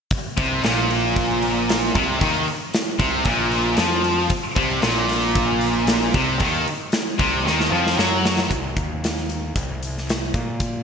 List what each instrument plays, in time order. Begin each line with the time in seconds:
0.11 kick, open hi-hat
0.37 picked electric bass C2, overdriven electric guitar C3, kick, open hi-hat
0.63 picked electric bass A#1, overdriven electric guitar A#2, snare, open hi-hat
0.91 open hi-hat
1.16 kick, open hi-hat
1.42 open hi-hat
1.69 snare, open hi-hat
1.95 picked electric bass C2, overdriven electric guitar C3, kick, open hi-hat
2.20 picked electric bass D#2, overdriven electric guitar D#3, kick, open hi-hat
2.48 open hi-hat
2.74 snare, open hi-hat
2.99 picked electric bass C2, overdriven electric guitar C3, kick, open hi-hat
3.25 picked electric bass A#1, overdriven electric guitar A#2, kick, open hi-hat
3.52 open hi-hat
3.77 picked electric bass F2, overdriven electric guitar F3, snare, open hi-hat
4.04 open hi-hat
4.30 kick, open hi-hat
4.56 picked electric bass C2, overdriven electric guitar C3, kick, open hi-hat
4.82 picked electric bass A#1, overdriven electric guitar A#2, snare, open hi-hat
5.09 snare, open hi-hat
5.35 kick, open hi-hat
5.61 open hi-hat
5.87 snare, open hi-hat
6.14 picked electric bass C2, overdriven electric guitar C3, kick, open hi-hat
6.39 picked electric bass D#2, overdriven electric guitar D#3, kick, open hi-hat
6.68 open hi-hat
6.92 snare, open hi-hat
7.18 picked electric bass C2, overdriven electric guitar C3, kick, open hi-hat
7.44 picked electric bass D#2, overdriven electric guitar D#3, snare
7.60 snare
7.71 picked electric bass F2, overdriven electric guitar F3
7.87 snare
7.97 picked electric bass F#2, overdriven electric guitar F#3, snare
8.25 snare
8.38 snare
8.50 picked electric bass C2, kick, closed hi-hat
8.76 picked electric bass D#2, kick, closed hi-hat
9.04 snare, closed hi-hat
9.17 snare
9.29 closed hi-hat
9.56 picked electric bass C2, kick, closed hi-hat
9.83 closed hi-hat
9.98 snare
10.09 snare, closed hi-hat
10.34 picked electric bass A#2, kick, closed hi-hat
10.60 kick, closed hi-hat